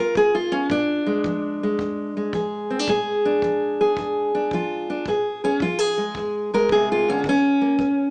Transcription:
0.00 0.12 F2 medium
0.00 0.35 F4 soft
0.00 0.17 A#4 medium
0.15 0.51 D4 medium
0.15 0.35 G#4 medium
0.15 kick medium
0.35 0.53 F4 medium
0.52 0.70 C#4 medium
0.70 1.22 A#2 medium
0.70 2.34 D4 loud
0.70 kick medium
1.06 1.63 G#3 soft
1.24 1.76 F3 medium
1.24 kick medium
1.63 2.16 G#3 soft
1.79 2.31 F2 medium
1.79 kick medium
2.17 5.08 G#3 soft
2.33 2.85 F3 medium
2.33 2.89 G#4 soft
2.33 kick medium
2.70 2.79 C4 soft
2.79 2.89 D4 soft
2.88 3.40 A#2 medium
2.88 3.80 G#4 medium
2.88 kick medium
3.25 4.33 D4 medium
3.42 3.94 F3 medium
3.42 kick medium
3.81 4.53 G#4 medium
3.97 4.49 F2 medium
3.97 kick medium
4.35 4.88 D4 medium
4.51 5.04 F3 medium
4.51 5.08 F4 medium
4.51 kick medium
4.90 5.05 D4 medium
5.06 5.58 A#2 medium
5.06 5.43 G#4 soft
5.06 kick medium
5.44 5.62 C#4 medium
5.44 5.62 G#4 soft
5.60 6.12 F3 medium
5.60 5.79 F4 medium
5.60 kick medium
5.79 6.52 G#4 medium
5.98 6.52 G#3 soft
6.15 6.67 F2 medium
6.15 kick medium
6.54 7.26 G#3 soft
6.54 6.71 A#4 medium
6.69 7.07 C3 medium
6.69 6.89 G#4 loud
6.69 kick medium
6.92 7.08 F4 medium
7.08 7.26 D3 medium
7.08 7.26 C#4 medium
7.24 7.76 D#3 medium
7.24 kick medium
7.29 8.10 C#4 medium
7.61 7.79 A#3 soft
7.79 8.10 A#3 medium
7.79 kick medium

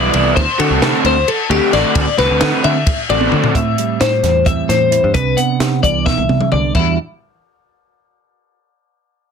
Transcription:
0.00 0.13 E3 medium
0.00 0.14 G3 medium
0.00 0.14 B3 medium
0.00 0.14 E4 loud
0.00 0.36 D5 medium
0.14 0.33 C2 medium
0.14 0.37 E3 medium
0.14 0.37 G3 medium
0.14 0.38 B3 loud
0.14 0.38 E4 medium
0.14 ride medium
0.36 0.46 D2 loud
0.36 0.59 C5 loud
0.36 kick loud
0.36 ride loud
0.59 0.69 D3 medium
0.59 0.81 D3 medium
0.59 0.82 A3 loud
0.59 0.82 C4 loud
0.59 0.82 F#4 loud
0.59 1.05 A4 medium
0.59 ride medium
0.70 0.80 C2 medium
0.82 0.91 C3 loud
0.82 1.12 D3 medium
0.82 1.12 A3 medium
0.82 1.12 C4 medium
0.82 1.12 F#4 medium
0.82 snare loud
0.82 ride loud
1.04 1.23 D2 loud
1.04 1.28 C5 medium
1.04 ride medium
1.28 1.50 A4 medium
1.28 ride loud
1.50 1.59 D2 medium
1.50 1.72 D3 medium
1.50 1.73 A3 medium
1.50 1.73 C4 medium
1.50 1.73 F#4 loud
1.50 1.73 G4 medium
1.50 ride medium
1.73 1.83 A1 medium
1.73 2.03 D3 medium
1.73 2.03 A3 medium
1.73 2.03 C4 medium
1.73 2.03 F#4 medium
1.73 2.18 D5 medium
1.73 snare soft
1.73 ride medium
1.95 2.05 D2 loud
1.95 kick loud
1.95 ride loud
2.18 2.28 C2 medium
2.18 2.41 D3 medium
2.18 2.41 A3 medium
2.18 2.42 C4 medium
2.18 2.42 F#4 loud
2.18 2.64 B4 medium
2.18 snare soft
2.18 ride medium
2.31 2.40 D2 medium
2.41 2.51 D3 loud
2.41 2.72 D3 medium
2.41 2.72 A3 medium
2.41 2.72 C4 medium
2.41 2.72 F#4 medium
2.41 snare loud
2.41 ride loud
2.64 2.83 D3 medium
2.64 3.09 E5 medium
2.64 ride medium
2.87 kick loud
2.87 ride loud
3.10 3.28 A1 medium
3.10 3.30 D3 medium
3.10 3.31 A3 medium
3.10 3.31 C4 medium
3.10 3.31 F#4 medium
3.10 3.56 D5 medium
3.10 ride medium
3.21 high tom medium
3.31 3.55 D3 medium
3.31 3.52 D3 medium
3.31 3.55 A3 medium
3.31 3.55 C4 medium
3.31 3.55 F#4 medium
3.31 mid tom medium
3.44 floor tom loud
3.55 3.74 A2 loud
3.55 4.70 A2 medium
3.55 4.45 C4 medium
3.55 4.02 E5 medium
3.55 kick loud
3.55 closed hi-hat loud
3.78 5.37 G3 medium
3.78 closed hi-hat medium
4.01 4.20 A2 medium
4.01 4.47 C5 medium
4.01 snare medium
4.01 closed hi-hat medium
4.23 4.61 E2 medium
4.23 5.17 E3 medium
4.23 snare soft
4.23 closed hi-hat medium
4.46 5.13 C4 medium
4.46 4.69 E5 medium
4.46 kick medium
4.46 closed hi-hat medium
4.69 5.16 E2 medium
4.69 4.97 A2 medium
4.69 5.14 C5 medium
4.69 snare soft
4.69 closed hi-hat medium
4.91 5.03 E4 medium
4.91 closed hi-hat medium
5.03 5.13 G2 medium
5.03 5.15 G4 medium
5.14 5.34 C2 loud
5.14 5.83 C3 medium
5.14 6.72 D4 medium
5.14 5.38 B4 loud
5.14 kick loud
5.14 closed hi-hat medium
5.37 6.72 B3 medium
5.37 5.83 F#5 medium
5.37 closed hi-hat medium
5.60 5.79 C3 medium
5.60 snare loud
5.60 closed hi-hat medium
5.83 6.12 C2 medium
5.83 6.52 E3 medium
5.83 6.06 D5 medium
5.83 kick medium
5.83 closed hi-hat medium
6.06 6.28 B2 medium
6.06 6.52 E5 medium
6.06 kick loud
6.06 snare medium
6.18 6.28 C2 medium
6.28 6.39 C2 loud
6.28 6.52 C3 medium
6.28 high tom medium
6.41 mid tom medium
6.52 6.71 C2 medium
6.52 6.75 D3 medium
6.52 6.75 D5 medium
6.52 mid tom loud
6.75 6.97 E2 medium
6.75 6.97 E3 medium
6.75 6.97 G3 medium
6.75 6.98 D4 medium
6.75 6.97 E4 medium
6.75 kick medium
6.75 crash medium
6.79 6.98 F#4 medium

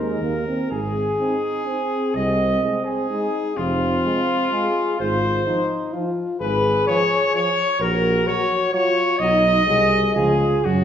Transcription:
0.00 0.20 D#2 soft
0.00 0.22 G#3 soft
0.00 0.47 D#4 medium
0.00 0.67 A#4 soft
0.21 0.46 D#2 soft
0.21 0.46 A#3 soft
0.47 0.71 C4 soft
0.71 1.11 G#1 soft
0.71 2.17 G#4 medium
0.71 2.14 G#4 medium
1.19 1.35 C4 soft
1.19 1.68 D#4 soft
1.66 2.63 C4 medium
1.66 1.83 C4 soft
2.15 2.56 C2 soft
2.15 2.87 D#5 medium
2.15 2.69 D#5 medium
2.63 2.79 G#3 soft
2.63 3.10 C4 soft
2.85 3.39 G#4 medium
2.85 3.59 G#4 medium
3.10 3.26 G#3 soft
3.10 3.56 D#4 medium
3.56 3.97 F1 medium
3.56 4.50 C4 medium
3.56 4.97 F4 medium
3.56 4.99 F4 medium
4.05 4.21 G#3 soft
4.52 4.68 G#3 soft
4.52 5.00 G#4 medium
5.00 5.39 G#1 medium
5.00 5.46 F4 medium
5.00 5.69 C5 medium
5.47 5.63 F3 soft
5.47 5.95 D#4 medium
5.94 6.10 F3 medium
5.94 6.40 F4 medium
6.41 6.80 G#1 medium
6.41 7.51 G#4 medium
6.41 6.84 B4 medium
6.41 6.85 B4 medium
6.87 7.04 F3 soft
6.87 7.33 C#5 medium
7.33 7.50 F3 soft
7.33 7.83 C#5 medium
7.33 7.80 C#5 medium
7.80 8.19 A#1 medium
7.80 8.69 F#4 medium
7.80 8.29 A#4 medium
7.80 8.26 A#4 medium
8.27 8.43 F#3 medium
8.27 8.73 C#5 medium
8.73 8.89 F#3 medium
8.73 9.19 F4 medium
8.73 9.18 C#5 medium
8.73 9.21 C#5 medium
9.18 9.59 B1 medium
9.18 9.36 F#3 medium
9.18 9.66 D#4 medium
9.18 10.13 D#5 medium
9.18 10.16 D#5 medium
9.67 10.08 C2 medium
9.67 9.83 F#3 soft
9.67 10.17 G#4 medium
10.14 10.57 C#2 medium
10.14 10.32 F3 soft
10.14 10.65 F4 medium
10.14 10.66 G#4 medium
10.65 10.84 F#2 medium
10.65 10.84 C#4 medium
10.65 10.84 F#4 medium

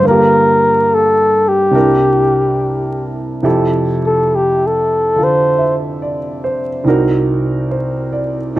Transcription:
0.00 1.71 G2 soft
0.00 1.73 D3 soft
0.05 1.74 A#3 soft
0.05 1.76 F4 soft
0.05 0.96 A#4 medium
0.11 1.77 G4 soft
0.94 1.50 A4 medium
1.48 3.19 G4 medium
1.71 3.44 C2 soft
1.71 3.41 C3 soft
1.71 3.45 D4 soft
1.71 3.42 E4 soft
1.75 3.46 A#4 soft
3.43 6.84 F2 soft
3.43 6.84 C3 soft
3.43 6.84 E4 soft
3.43 6.85 G4 soft
3.43 5.18 A4 medium
4.06 4.37 A4 medium
4.36 4.68 G4 medium
4.66 5.25 A4 medium
5.16 6.85 D3 soft
5.16 6.86 F4 soft
5.16 6.87 A4 soft
5.24 5.76 C5 medium
5.59 6.18 E5 soft
6.02 6.68 D5 soft
6.44 7.03 C5 soft
6.84 8.53 C2 soft
6.84 8.53 C3 soft
6.84 8.54 D#4 soft
6.88 8.55 F#4 soft
6.88 8.55 A#4 medium
7.71 8.36 C5 soft
8.13 8.59 D5 soft
8.56 8.59 C3 soft

